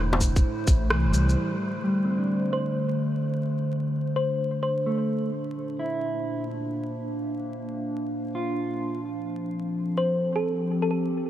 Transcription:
0.00 0.43 E1 medium
0.00 1.37 A2 medium
0.00 0.38 D3 medium
0.00 5.09 A3 medium
0.00 1.38 E4 medium
0.00 9.85 C5 medium
0.13 low bongo medium
0.21 kick medium
0.21 shaker medium
0.36 kick loud
0.36 shaker soft
0.67 0.82 A1 medium
0.67 kick loud
0.67 shaker medium
0.83 0.92 A1 medium
0.90 1.08 C2 medium
0.90 1.55 E3 medium
0.90 cross-stick loud
1.06 1.13 E1 medium
1.12 1.36 C2 loud
1.12 1.71 G3 medium
1.12 shaker medium
1.29 shaker soft
1.37 5.09 D3 medium
1.84 2.48 G3 soft
2.05 2.64 C4 soft
2.18 2.76 D4 soft
2.53 2.78 C5 medium
2.74 9.51 D4 medium
4.16 4.41 C5 medium
4.63 5.09 C5 medium
4.86 5.29 A3 medium
5.10 8.81 A#2 medium
5.67 8.81 A#3 medium
5.79 6.43 E4 medium
8.35 8.99 F4 medium
8.81 11.30 F3 medium
9.03 11.30 C4 medium
9.49 11.30 A4 medium
9.98 10.22 C5 medium
10.16 11.30 G4 medium
10.36 10.67 A4 medium
10.82 10.88 A4 medium
10.91 11.00 A4 medium

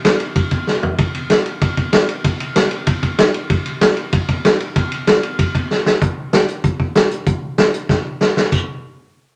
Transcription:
0.05 snare loud
0.05 ride medium
0.20 ride medium
0.36 kick loud
0.36 ride medium
0.51 kick medium
0.51 ride medium
0.67 snare medium
0.83 floor tom medium
0.98 kick loud
0.98 ride medium
1.15 ride medium
1.30 snare loud
1.30 ride medium
1.46 ride medium
1.61 kick loud
1.61 ride medium
1.77 kick medium
1.77 ride medium
1.93 snare loud
1.93 ride medium
2.09 ride medium
2.24 kick loud
2.24 ride medium
2.40 ride medium
2.56 snare loud
2.56 ride medium
2.71 ride medium
2.87 kick loud
2.87 ride medium
3.03 kick medium
3.03 ride medium
3.19 snare loud
3.19 ride medium
3.34 ride medium
3.50 kick loud
3.50 ride medium
3.66 ride medium
3.81 snare loud
3.81 ride medium
3.97 ride medium
4.13 kick loud
4.13 ride medium
4.29 kick medium
4.29 ride medium
4.45 snare loud
4.45 ride medium
4.60 ride medium
4.76 kick loud
4.76 ride medium
4.92 ride medium
5.07 snare loud
5.07 ride medium
5.23 ride medium
5.39 kick loud
5.39 ride medium
5.55 kick medium
5.55 ride medium
5.71 snare medium
5.86 snare medium
6.02 kick loud
6.02 closed hi-hat medium
6.33 snare loud
6.33 closed hi-hat medium
6.48 closed hi-hat medium
6.64 kick loud
6.64 closed hi-hat medium
6.80 kick medium
6.95 snare loud
6.95 closed hi-hat medium
7.11 closed hi-hat medium
7.26 kick loud
7.26 closed hi-hat medium
7.58 snare loud
7.58 closed hi-hat medium
7.74 closed hi-hat medium
7.89 kick loud
7.89 snare medium
8.21 snare medium
8.37 snare medium
8.52 kick loud
8.52 crash medium

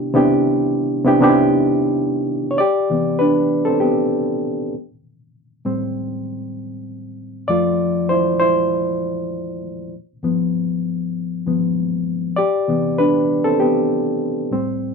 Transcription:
0.00 0.14 C3 medium
0.00 0.15 B3 medium
0.00 0.15 D4 medium
0.00 0.16 E4 medium
0.00 0.16 G4 loud
0.14 0.95 C3 medium
0.14 0.96 B3 medium
0.14 0.96 D4 medium
0.14 0.96 E4 medium
0.14 0.97 G4 medium
1.05 1.19 C3 medium
1.05 1.19 B3 medium
1.05 1.20 D4 medium
1.05 1.20 E4 medium
1.05 1.20 G4 medium
1.21 2.29 C3 medium
1.21 2.30 B3 medium
1.21 2.30 D4 medium
1.21 1.29 D#4 medium
1.21 2.31 G4 medium
1.29 2.34 E4 medium
2.51 2.59 C#5 medium
2.58 3.17 G4 medium
2.58 3.22 D5 loud
2.90 4.70 C3 medium
2.90 4.70 E3 soft
2.90 3.81 B3 medium
3.19 3.64 D4 medium
3.19 3.67 B4 medium
3.65 3.81 C4 medium
3.65 3.82 A4 medium
3.80 4.70 B3 medium
3.80 4.69 G4 medium
5.65 6.06 A2 medium
5.65 6.06 G3 soft
5.65 6.06 C4 medium
7.48 8.37 F2 medium
7.48 8.37 F3 soft
7.48 8.37 A3 medium
7.48 8.07 F4 medium
7.48 8.06 D5 medium
8.09 8.39 E4 medium
8.09 8.38 C5 medium
8.40 9.59 E4 medium
8.40 9.59 C5 medium
10.23 11.45 G2 soft
10.23 11.45 F3 soft
10.23 11.46 B3 medium
11.47 11.74 G2 soft
11.47 11.74 F3 soft
11.47 11.75 B3 soft
12.36 12.95 G4 medium
12.36 13.00 D5 medium
12.68 14.48 C3 soft
12.68 14.48 E3 soft
12.68 13.60 B3 medium
12.98 13.42 D4 medium
12.98 13.46 B4 medium
13.44 13.52 C4 medium
13.44 13.51 A4 medium
13.60 14.49 B3 medium
13.60 14.48 G4 medium
14.51 14.92 A2 soft
14.51 14.93 G3 soft
14.51 14.93 C4 medium

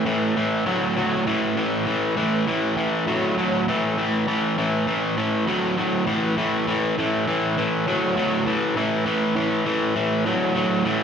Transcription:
0.06 0.33 A2 medium
0.06 0.34 E3 medium
0.36 0.64 A2 medium
0.36 0.64 E3 medium
0.66 0.94 A2 medium
0.66 0.94 F#3 medium
0.96 1.24 A2 medium
0.96 1.24 F#3 medium
1.27 1.54 A2 medium
1.27 1.54 E3 medium
1.57 1.84 A2 medium
1.57 1.85 E3 medium
1.86 2.14 A2 medium
1.86 2.14 E3 medium
2.17 2.44 A2 medium
2.17 2.44 E3 medium
2.47 2.74 A2 medium
2.47 2.75 E3 medium
2.77 3.05 A2 medium
2.77 3.05 E3 medium
3.07 3.35 A2 medium
3.07 3.35 F#3 medium
3.38 3.65 A2 medium
3.38 3.65 F#3 medium
3.68 3.95 A2 medium
3.68 3.95 E3 medium
3.98 4.25 A2 medium
3.98 4.25 E3 medium
4.27 4.55 A2 medium
4.27 4.55 E3 medium
4.58 4.85 A2 medium
4.58 4.85 E3 medium
4.87 5.15 A2 medium
4.87 5.15 E3 medium
5.17 5.45 A2 medium
5.17 5.45 E3 medium
5.48 5.75 A2 medium
5.48 5.75 F#3 medium
5.78 6.05 A2 medium
5.78 6.05 F#3 medium
6.07 6.34 A2 medium
6.07 6.34 E3 medium
6.37 6.64 A2 medium
6.37 6.65 E3 medium
6.67 6.95 A2 medium
6.67 6.95 E3 medium
6.98 7.25 A2 medium
6.98 7.25 E3 medium
7.27 7.55 A2 medium
7.27 7.55 E3 medium
7.57 7.85 A2 medium
7.57 7.85 E3 medium
7.87 8.14 A2 medium
7.87 8.15 F#3 medium
8.17 8.44 A2 medium
8.17 8.44 F#3 medium
8.46 8.74 A2 medium
8.46 8.74 E3 medium
8.76 9.04 A2 medium
8.76 9.04 E3 medium
9.06 9.34 A2 medium
9.06 9.34 E3 medium
9.36 9.64 A2 medium
9.36 9.64 E3 medium
9.66 9.93 A2 medium
9.66 9.94 E3 medium
9.96 10.23 A2 medium
9.96 10.24 E3 medium
10.26 10.53 A2 medium
10.26 10.54 F#3 medium
10.55 10.83 A2 medium
10.55 10.83 F#3 medium
10.85 11.03 A2 medium
10.85 11.03 E3 medium

